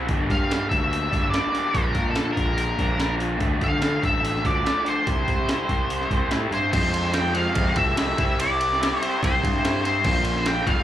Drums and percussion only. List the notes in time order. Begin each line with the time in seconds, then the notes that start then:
0.09 kick, open hi-hat
0.30 kick, open hi-hat
0.51 snare, open hi-hat
0.71 kick, open hi-hat
0.93 open hi-hat
1.13 kick, open hi-hat
1.34 snare, open hi-hat
1.55 open hi-hat
1.75 kick, open hi-hat
1.95 kick, open hi-hat
2.15 snare, open hi-hat
2.37 kick, open hi-hat
2.58 open hi-hat
2.79 kick, open hi-hat
3.00 snare, open hi-hat
3.20 open hi-hat
3.40 kick, open hi-hat
3.61 kick, open hi-hat
3.82 snare, open hi-hat
4.03 kick, open hi-hat
4.25 open hi-hat
4.36 snare
4.45 kick, open hi-hat
4.66 snare, open hi-hat
4.86 open hi-hat
5.07 kick, open hi-hat
5.28 kick, open hi-hat
5.49 snare, open hi-hat
5.69 kick, open hi-hat
5.90 open hi-hat
6.01 snare
6.11 kick, open hi-hat
6.31 snare, open hi-hat
6.52 open hi-hat
6.73 kick, crash, ride
6.94 ride
7.14 snare, ride
7.35 ride
7.55 kick, ride
7.76 kick, ride
7.97 snare, ride
8.18 kick, ride
8.40 ride
8.61 ride
8.73 snare
8.83 snare, ride
9.03 ride
9.23 kick, ride
9.44 kick, ride
9.65 snare, ride
9.85 ride
10.04 kick, crash
10.25 ride
10.36 snare
10.46 snare, ride
10.67 kick, ride